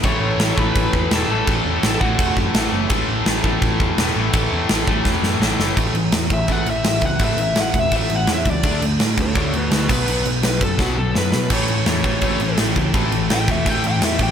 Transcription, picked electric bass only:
\new Staff \with { instrumentName = "Picked electric bass" } { \clef bass \time 4/4 \key a \major \tempo 4 = 167 a,,8 a,,8 a,,8 a,,8 a,,8 e,8 e,,8 a,,8 | a,,8 e,8 a,,8 a,,8 e,,8 fis,8 a,,8 fis,,8 | a,,8 a,,8 a,,8 a,,8 a,,8 e,8 e,,8 a,,8 | a,,8 e,8 a,,8 a,,8 e,,8 fis,8 a,,8 fis,,8 |
a,,8 a,,8 e,8 a,,8 a,,8 a,,8 a,,8 cis,8 | a,,8 a,,8 a,,8 e,,8 a,,8 a,,8 e,8 cis,8 | d,8 d,8 a,8 d,8 d,8 d,8 d,8 b,,8 | b,,8 b,,8 b,,8 fis,,8 b,,8 b,,8 fis,8 b,8 |
a,,8 a,,8 e,8 a,,8 a,,8 a,,8 a,,8 cis,8 | a,,8 a,,8 a,,8 e,,8 a,,8 a,,8 e,8 a,8 | }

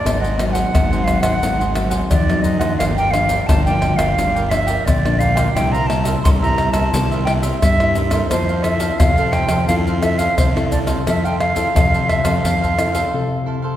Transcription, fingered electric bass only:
\new Staff \with { instrumentName = "Fingered electric bass" } { \clef bass \time 4/4 \key f \major \tempo 4 = 87 aes,,4 aes,,8. aes,,16 aes,,4 f,8 ges,8 | g,,4 g,,8. g,,16 g,,4 bes,,4 | c,4 c,8. c,16 c,4 g,4 | f,4 f,8. f,16 f,4 c,4 |
f,4 f,8. f,16 f,4 r4 | }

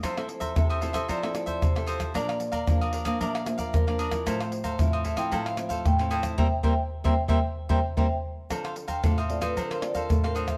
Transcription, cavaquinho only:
\new Staff \with { instrumentName = "Cavaquinho" } { \time 4/4 \key f \major \tempo 4 = 113 <f' a' c'' e''>16 <a' c'' e''>16 r16 <a' c'' e''>8 <a' c'' e''>16 <f' a' c'' e''>16 <a' c'' e''>16 <f' a' c'' e''>16 <a' c'' e''>16 r16 <a' c'' e''>8 <a' c'' e''>16 <f' a' c'' e''>8 | <d' bes' d'' f''>16 <bes' d'' f''>16 r16 <bes' d'' f''>8 <bes' d'' f''>16 <d' bes' d'' f''>16 <bes' d'' f''>16 <d' bes' d'' f''>16 <bes' d'' f''>16 r16 <bes' d'' f''>8 <bes' d'' f''>16 <d' bes' d'' f''>8 | <e' a' c'' f''>16 <a' c'' f''>16 r16 <a' c'' f''>8 <a' c'' f''>16 <e' a' c'' f''>16 <a' c'' f''>16 <e' a' c'' f''>16 <a' c'' f''>16 r16 <a' c'' f''>8 <a' c'' f''>16 <e' a' c'' f''>8 | <bes' c'' e''>16 r16 <bes' c'' e''>16 r8 <bes' c'' e''>16 r16 <bes' c'' e''>16 r8 <bes' c'' e''>16 r16 <bes' c'' e''>16 r8. |
\key d \minor <d' a' c'' f''>16 <a' c'' f''>16 r16 <a' c'' f''>16 <d' a' c'' f''>16 <a' c'' f''>8 <a' c'' f''>16 <d' a' c'' f''>16 <a' c'' f''>16 r16 <a' c'' f''>8 <a' c'' f''>16 <d' a' c'' f''>16 <a' c'' f''>16 | }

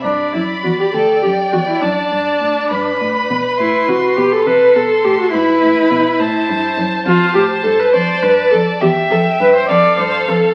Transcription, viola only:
\new Staff \with { instrumentName = "Viola" } { \time 6/8 \key g \major \tempo 4. = 68 d'8 e'8 fis'16 g'16 a'8 g'8 fis'16 e'16 | d'2~ d'8 r8 | e'8 fis'8 g'16 a'16 b'8 a'8 g'16 fis'16 | e'2~ e'8 r8 |
\key f \lydian f'8 g'8 a'16 b'16 c''8 b'8 a'8 | g'8 a'8 b'16 c''16 d''8 c''8 a'8 | }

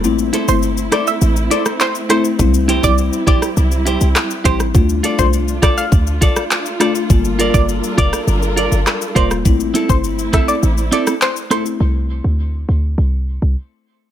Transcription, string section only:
\new Staff \with { instrumentName = "String section" } { \time 4/4 \key c \mixolydian \tempo 4 = 102 << { <a e'>1 | <g e'>1 | <a f'>1 | <g d' bes'>1 |
<a e'>1 | r1 | } \\ { c'1~ | c'1 | d'1 | a'1 |
c'1 | r1 | } >> }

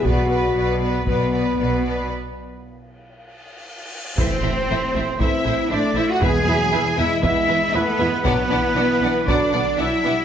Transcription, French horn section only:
\new Staff \with { instrumentName = "French horn section" } { \clef bass \time 4/4 \key a \dorian \tempo 4 = 118 fis'2 b2 | r1 | r2 c'4 a4 | gis8 fis8 e8 gis4. a8 gis8 |
fis8 e4. d4 fis8 g8 | }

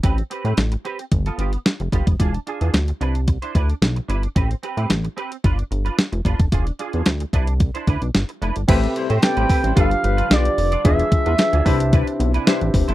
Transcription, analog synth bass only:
\new Staff \with { instrumentName = "Analog synth bass" } { \clef bass \time 4/4 \key a \minor \tempo 4 = 111 a,,8 r16 a,16 a,,8 r8 g,,8 g,,8 r16 f,,16 g,,16 f,,16 | e,,8 r16 e,16 d,8 c,4 d,8 b,,8 g,,8 | a,,8 r16 a,16 a,,8 r8 g,,8 g,,8 r16 f,,16 g,,16 f,,16 | e,,8 r16 e,16 d,8 c,4 d,16 b,,16 g,,16 r16 f,,16 g,,16 |
a,,8 r16 a,16 r16 a,,16 r16 a,,16 g,,8 g,,8 b,,8 f,,8 | e,,8 r16 e,16 r16 d,16 c,4 b,,8 r16 a,,16 f,,16 g,,16 | }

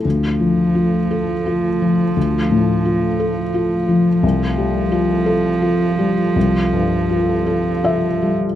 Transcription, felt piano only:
\new Staff \with { instrumentName = "Felt piano" } { \time 3/4 \key d \minor \tempo 4 = 85 << { r2. | r2. | r2. | r2 e''4 | } \\ { d,8 f8 f'8 a'8 f'8 f8 | d,8 a,8 f'8 a'8 f'8 f8 | c,8 g8 f'8 a'8 f'8 g8 | c,8 g,8 f'8 a'8 f'8 g8 | } >> }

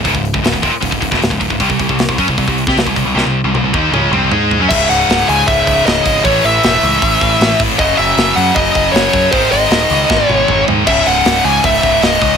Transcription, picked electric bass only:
\new Staff \with { instrumentName = "Picked electric bass" } { \clef bass \time 4/4 \key cis \minor \tempo 4 = 156 cis,,16 cis,,8 cis,,16 cis,,16 cis,,16 dis,,16 r16 cis,,16 cis,,16 cis,,16 e,,16 cis,,16 cis,,16 cis,,16 cis,,16 | c,16 c,16 c,16 c,8 c,16 fis,16 c,16 c,16 c,8 c16 c,16 c,16 c,16 c,16 | c,16 c,8 c,16 c,16 c,16 dis,8 cis,8 c,8 gis,8. fis,16 | cis,,8 cis,,8 cis,,8 cis,8 cis,,8 cis,,8 cis,,8 gis,,8 |
a,,8 a,,8 e,,8 cis,8 a,,8 a,,8 a,,8 gis,,8 | fis,,8 fis,,8 fis,,8 fis,8 fis,,8 fis,,8 fis,,8 fis,8 | gis,,8 gis,,8 dis,,8 cis,8 gis,,8 gis,,8 gis,,8 gis,8 | cis,,8 cis,,8 cis,,8 cis,8 cis,,8 cis,,8 cis,,8 cis,8 | }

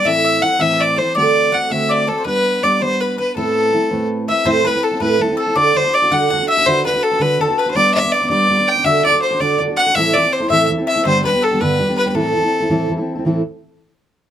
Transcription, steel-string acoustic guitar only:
\new Staff \with { instrumentName = "Steel-string acoustic guitar" } { \time 6/8 \key a \dorian \tempo 4. = 109 <a, e c' e' a'>4 <e c' e' a'>8 <a, e c' e' a'>4 <c' e' a'>8 | <d a c' fis' a'>4 <a c' fis' a'>8 <d a c' fis' a'>4 <c' a'>8 | <g b d' b'>4 <g b d' b'>8 <g b d' b'>4 <b d' b'>8 | <a, a c' e' b'>4 <a c' e' b'>8 <a, a c' e' b'>4 <c' e' b'>8 |
<a, a c' e' a'>8 <a c' e' a'>16 <c' e' a'>8 <c' e' a'>16 <a, a c' e' a'>8 <a c' e' a'>16 <c' e' a'>8 <c' e' a'>16 | <d d' fis' a'>8 <d fis' a'>16 <d' fis' a'>8 <d' fis' a'>16 <d d' fis' a'>8 <d d' fis' a'>16 <d' fis' a'>8 <d' fis' a'>16 | <d d' fis' b'>8 <d d' fis' b'>16 <d' fis' b'>8 <d' fis' b'>16 <d d' fis' b'>8 <d d' fis' b'>16 <d' fis' b'>8 <d' fis' b'>16 | <g b d' b'>8 <g b d'>16 <b d' b'>8 <b d' b'>16 <g b d' b'>8 <g b d' b'>16 <b d' b'>8 <b d' b'>16 |
<d d' fis' a'>8 <d d' fis' a'>16 a'8 <d' fis' a'>16 <d d' fis' a'>8 <d d' fis' a'>16 <d' fis' a'>8 <d' fis' a'>16 | <a, e c' e' a'>8 <e c' e'>16 <c' e' a'>8 <c' e' a'>16 <a, e c' e' a'>8 <e c' e' a'>16 <c' e' a'>8 <c' e' a'>16 | <g, d g b d' g'>8 <g b d' g'>16 <g b d' g'>8 <g b d' g'>16 <g, d g b d' g'>8 <g b d' g'>16 <g b d' g'>8 <g b d' g'>16 | <a, e c' e' a'>8 <e c' e' a'>16 <c' e' a'>8 <c' e' a'>16 <a, e c' e' a'>8 <e c' e' a'>16 <c' e' a'>8 <c' e' a'>16 |
<a, e c' e' a'>8 r2 r8 | }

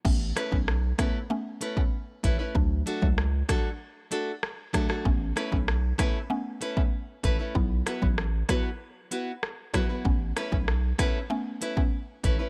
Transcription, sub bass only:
\new Staff \with { instrumentName = "Sub bass" } { \clef bass \time 4/4 \key a \major \tempo 4 = 96 a,,8 r16 b,,8. r2 a,,16 r16 | d,8 r16 cis,8. r2 r8 | a,,8 r16 b,,8. r2 a,,16 r16 | b,,8 r16 a,,8. r2 r8 |
a,,8 r16 b,,8. r2 a,,16 r16 | }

